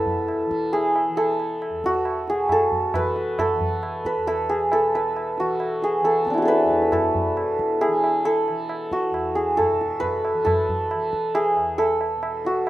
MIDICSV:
0, 0, Header, 1, 4, 480
1, 0, Start_track
1, 0, Key_signature, 4, "major"
1, 0, Tempo, 442478
1, 1745, Time_signature, 4, 2, 24, 8
1, 13775, End_track
2, 0, Start_track
2, 0, Title_t, "Santur"
2, 0, Program_c, 0, 15
2, 0, Note_on_c, 0, 64, 45
2, 0, Note_on_c, 0, 66, 65
2, 0, Note_on_c, 0, 69, 72
2, 0, Note_on_c, 0, 71, 86
2, 790, Note_on_c, 0, 68, 79
2, 855, Note_off_c, 0, 69, 0
2, 1260, Note_off_c, 0, 66, 0
2, 1270, Note_on_c, 0, 69, 81
2, 1335, Note_off_c, 0, 68, 0
2, 1595, Note_off_c, 0, 64, 0
2, 2014, Note_on_c, 0, 66, 77
2, 2209, Note_off_c, 0, 71, 0
2, 2490, Note_on_c, 0, 68, 72
2, 2555, Note_off_c, 0, 69, 0
2, 2734, Note_on_c, 0, 69, 82
2, 2799, Note_off_c, 0, 68, 0
2, 3203, Note_on_c, 0, 71, 89
2, 3678, Note_off_c, 0, 69, 0
2, 3682, Note_on_c, 0, 69, 80
2, 4400, Note_off_c, 0, 71, 0
2, 4405, Note_on_c, 0, 71, 78
2, 4631, Note_off_c, 0, 69, 0
2, 4636, Note_on_c, 0, 69, 86
2, 4875, Note_on_c, 0, 68, 73
2, 4940, Note_off_c, 0, 69, 0
2, 5128, Note_on_c, 0, 69, 79
2, 5193, Note_off_c, 0, 68, 0
2, 5367, Note_off_c, 0, 71, 0
2, 5371, Note_on_c, 0, 71, 66
2, 5533, Note_off_c, 0, 66, 0
2, 5856, Note_on_c, 0, 66, 70
2, 6331, Note_on_c, 0, 68, 73
2, 6396, Note_off_c, 0, 69, 0
2, 6561, Note_on_c, 0, 69, 79
2, 6626, Note_off_c, 0, 68, 0
2, 6775, Note_on_c, 0, 59, 38
2, 6813, Note_on_c, 0, 60, 41
2, 6836, Note_on_c, 0, 62, 45
2, 6875, Note_on_c, 0, 64, 49
2, 6878, Note_off_c, 0, 71, 0
2, 6914, Note_off_c, 0, 66, 0
2, 6919, Note_on_c, 0, 66, 50
2, 6966, Note_on_c, 0, 68, 53
2, 6996, Note_off_c, 0, 69, 0
2, 7001, Note_on_c, 0, 69, 53
2, 7027, Note_on_c, 0, 71, 90
2, 7092, Note_off_c, 0, 60, 0
2, 7510, Note_off_c, 0, 69, 0
2, 7515, Note_on_c, 0, 69, 68
2, 7580, Note_off_c, 0, 68, 0
2, 8474, Note_on_c, 0, 68, 81
2, 8539, Note_off_c, 0, 69, 0
2, 8953, Note_on_c, 0, 69, 87
2, 9018, Note_off_c, 0, 68, 0
2, 9678, Note_off_c, 0, 66, 0
2, 9682, Note_on_c, 0, 66, 70
2, 9989, Note_off_c, 0, 71, 0
2, 10146, Note_on_c, 0, 68, 71
2, 10211, Note_off_c, 0, 69, 0
2, 10383, Note_on_c, 0, 69, 86
2, 10448, Note_off_c, 0, 68, 0
2, 10653, Note_off_c, 0, 64, 0
2, 10847, Note_on_c, 0, 71, 90
2, 10890, Note_off_c, 0, 62, 0
2, 11264, Note_off_c, 0, 59, 0
2, 11328, Note_off_c, 0, 69, 0
2, 11333, Note_on_c, 0, 69, 74
2, 12311, Note_on_c, 0, 68, 82
2, 12376, Note_off_c, 0, 69, 0
2, 12780, Note_on_c, 0, 69, 90
2, 12845, Note_off_c, 0, 68, 0
2, 13202, Note_off_c, 0, 66, 0
2, 13520, Note_on_c, 0, 66, 71
2, 13775, Note_off_c, 0, 66, 0
2, 13775, Note_off_c, 0, 69, 0
2, 13775, Note_off_c, 0, 71, 0
2, 13775, End_track
3, 0, Start_track
3, 0, Title_t, "Tanpura"
3, 0, Program_c, 1, 104
3, 0, Note_on_c, 1, 40, 54
3, 0, Note_on_c, 1, 47, 53
3, 0, Note_on_c, 1, 52, 56
3, 497, Note_off_c, 1, 52, 0
3, 497, Note_on_c, 1, 52, 58
3, 1179, Note_off_c, 1, 52, 0
3, 1179, Note_on_c, 1, 52, 50
3, 1837, Note_off_c, 1, 40, 0
3, 1842, Note_on_c, 1, 40, 52
3, 2494, Note_off_c, 1, 47, 0
3, 2498, Note_on_c, 1, 47, 52
3, 3191, Note_off_c, 1, 52, 0
3, 3191, Note_on_c, 1, 52, 57
3, 3854, Note_off_c, 1, 52, 0
3, 3854, Note_on_c, 1, 52, 53
3, 4509, Note_off_c, 1, 40, 0
3, 4514, Note_on_c, 1, 40, 57
3, 5187, Note_off_c, 1, 47, 0
3, 5191, Note_on_c, 1, 47, 53
3, 5859, Note_off_c, 1, 52, 0
3, 5859, Note_on_c, 1, 52, 56
3, 6522, Note_off_c, 1, 52, 0
3, 6522, Note_on_c, 1, 52, 54
3, 7194, Note_off_c, 1, 40, 0
3, 7199, Note_on_c, 1, 40, 55
3, 7869, Note_off_c, 1, 47, 0
3, 7873, Note_on_c, 1, 47, 51
3, 8537, Note_off_c, 1, 52, 0
3, 8537, Note_on_c, 1, 52, 53
3, 9209, Note_off_c, 1, 52, 0
3, 9209, Note_on_c, 1, 52, 54
3, 9875, Note_off_c, 1, 40, 0
3, 9879, Note_on_c, 1, 40, 56
3, 10541, Note_off_c, 1, 47, 0
3, 10546, Note_on_c, 1, 47, 55
3, 11208, Note_off_c, 1, 52, 0
3, 11208, Note_on_c, 1, 52, 57
3, 11873, Note_off_c, 1, 52, 0
3, 11873, Note_on_c, 1, 52, 58
3, 12531, Note_off_c, 1, 40, 0
3, 12536, Note_on_c, 1, 40, 56
3, 13195, Note_off_c, 1, 47, 0
3, 13200, Note_on_c, 1, 47, 54
3, 13775, Note_off_c, 1, 40, 0
3, 13775, Note_off_c, 1, 47, 0
3, 13775, Note_off_c, 1, 52, 0
3, 13775, End_track
4, 0, Start_track
4, 0, Title_t, "Tabla"
4, 66, Note_on_c, 9, 64, 61
4, 174, Note_off_c, 9, 64, 0
4, 308, Note_on_c, 9, 60, 67
4, 416, Note_off_c, 9, 60, 0
4, 554, Note_on_c, 9, 37, 55
4, 662, Note_off_c, 9, 37, 0
4, 799, Note_on_c, 9, 60, 70
4, 908, Note_off_c, 9, 60, 0
4, 1037, Note_on_c, 9, 60, 54
4, 1145, Note_off_c, 9, 60, 0
4, 1273, Note_on_c, 9, 60, 69
4, 1382, Note_off_c, 9, 60, 0
4, 1514, Note_on_c, 9, 60, 48
4, 1623, Note_off_c, 9, 60, 0
4, 1757, Note_on_c, 9, 60, 66
4, 1865, Note_off_c, 9, 60, 0
4, 1998, Note_on_c, 9, 37, 51
4, 2106, Note_off_c, 9, 37, 0
4, 2113, Note_on_c, 9, 62, 53
4, 2222, Note_off_c, 9, 62, 0
4, 2226, Note_on_c, 9, 60, 72
4, 2335, Note_off_c, 9, 60, 0
4, 2469, Note_on_c, 9, 62, 52
4, 2577, Note_off_c, 9, 62, 0
4, 2704, Note_on_c, 9, 60, 76
4, 2704, Note_on_c, 9, 64, 64
4, 2812, Note_off_c, 9, 60, 0
4, 2812, Note_off_c, 9, 64, 0
4, 2949, Note_on_c, 9, 64, 47
4, 3057, Note_off_c, 9, 64, 0
4, 3189, Note_on_c, 9, 60, 73
4, 3189, Note_on_c, 9, 64, 60
4, 3297, Note_off_c, 9, 60, 0
4, 3297, Note_off_c, 9, 64, 0
4, 3429, Note_on_c, 9, 62, 52
4, 3537, Note_off_c, 9, 62, 0
4, 3675, Note_on_c, 9, 60, 89
4, 3675, Note_on_c, 9, 64, 82
4, 3783, Note_off_c, 9, 60, 0
4, 3783, Note_off_c, 9, 64, 0
4, 3914, Note_on_c, 9, 64, 61
4, 4023, Note_off_c, 9, 64, 0
4, 4154, Note_on_c, 9, 60, 71
4, 4262, Note_off_c, 9, 60, 0
4, 4395, Note_on_c, 9, 37, 52
4, 4504, Note_off_c, 9, 37, 0
4, 4643, Note_on_c, 9, 60, 69
4, 4751, Note_off_c, 9, 60, 0
4, 4880, Note_on_c, 9, 60, 53
4, 4988, Note_off_c, 9, 60, 0
4, 5117, Note_on_c, 9, 60, 70
4, 5225, Note_off_c, 9, 60, 0
4, 5369, Note_on_c, 9, 60, 53
4, 5477, Note_off_c, 9, 60, 0
4, 5603, Note_on_c, 9, 60, 66
4, 5711, Note_off_c, 9, 60, 0
4, 5833, Note_on_c, 9, 62, 52
4, 5942, Note_off_c, 9, 62, 0
4, 6075, Note_on_c, 9, 60, 66
4, 6183, Note_off_c, 9, 60, 0
4, 6316, Note_on_c, 9, 62, 52
4, 6425, Note_off_c, 9, 62, 0
4, 6556, Note_on_c, 9, 60, 70
4, 6664, Note_off_c, 9, 60, 0
4, 6801, Note_on_c, 9, 37, 51
4, 6910, Note_off_c, 9, 37, 0
4, 7044, Note_on_c, 9, 62, 74
4, 7153, Note_off_c, 9, 62, 0
4, 7161, Note_on_c, 9, 62, 50
4, 7269, Note_off_c, 9, 62, 0
4, 7277, Note_on_c, 9, 37, 49
4, 7385, Note_off_c, 9, 37, 0
4, 7399, Note_on_c, 9, 62, 56
4, 7507, Note_off_c, 9, 62, 0
4, 7509, Note_on_c, 9, 60, 84
4, 7509, Note_on_c, 9, 64, 77
4, 7617, Note_off_c, 9, 60, 0
4, 7617, Note_off_c, 9, 64, 0
4, 7755, Note_on_c, 9, 64, 63
4, 7864, Note_off_c, 9, 64, 0
4, 7996, Note_on_c, 9, 60, 67
4, 8104, Note_off_c, 9, 60, 0
4, 8237, Note_on_c, 9, 37, 51
4, 8345, Note_off_c, 9, 37, 0
4, 8476, Note_on_c, 9, 60, 74
4, 8584, Note_off_c, 9, 60, 0
4, 8718, Note_on_c, 9, 60, 57
4, 8827, Note_off_c, 9, 60, 0
4, 8952, Note_on_c, 9, 60, 69
4, 9061, Note_off_c, 9, 60, 0
4, 9198, Note_on_c, 9, 60, 56
4, 9306, Note_off_c, 9, 60, 0
4, 9431, Note_on_c, 9, 60, 63
4, 9540, Note_off_c, 9, 60, 0
4, 9672, Note_on_c, 9, 37, 52
4, 9780, Note_off_c, 9, 37, 0
4, 9797, Note_on_c, 9, 62, 51
4, 9906, Note_off_c, 9, 62, 0
4, 9916, Note_on_c, 9, 60, 71
4, 10024, Note_off_c, 9, 60, 0
4, 10160, Note_on_c, 9, 62, 57
4, 10268, Note_off_c, 9, 62, 0
4, 10401, Note_on_c, 9, 60, 69
4, 10401, Note_on_c, 9, 64, 69
4, 10510, Note_off_c, 9, 60, 0
4, 10510, Note_off_c, 9, 64, 0
4, 10644, Note_on_c, 9, 62, 51
4, 10753, Note_off_c, 9, 62, 0
4, 10874, Note_on_c, 9, 63, 72
4, 10874, Note_on_c, 9, 64, 62
4, 10982, Note_off_c, 9, 63, 0
4, 10982, Note_off_c, 9, 64, 0
4, 11115, Note_on_c, 9, 60, 56
4, 11223, Note_off_c, 9, 60, 0
4, 11353, Note_on_c, 9, 60, 86
4, 11353, Note_on_c, 9, 64, 83
4, 11462, Note_off_c, 9, 60, 0
4, 11462, Note_off_c, 9, 64, 0
4, 11598, Note_on_c, 9, 64, 65
4, 11706, Note_off_c, 9, 64, 0
4, 11835, Note_on_c, 9, 60, 72
4, 11944, Note_off_c, 9, 60, 0
4, 12074, Note_on_c, 9, 37, 52
4, 12183, Note_off_c, 9, 37, 0
4, 12309, Note_on_c, 9, 60, 76
4, 12418, Note_off_c, 9, 60, 0
4, 12550, Note_on_c, 9, 60, 53
4, 12658, Note_off_c, 9, 60, 0
4, 12789, Note_on_c, 9, 60, 70
4, 12898, Note_off_c, 9, 60, 0
4, 13025, Note_on_c, 9, 60, 53
4, 13133, Note_off_c, 9, 60, 0
4, 13264, Note_on_c, 9, 60, 65
4, 13373, Note_off_c, 9, 60, 0
4, 13505, Note_on_c, 9, 62, 51
4, 13614, Note_off_c, 9, 62, 0
4, 13742, Note_on_c, 9, 60, 68
4, 13775, Note_off_c, 9, 60, 0
4, 13775, End_track
0, 0, End_of_file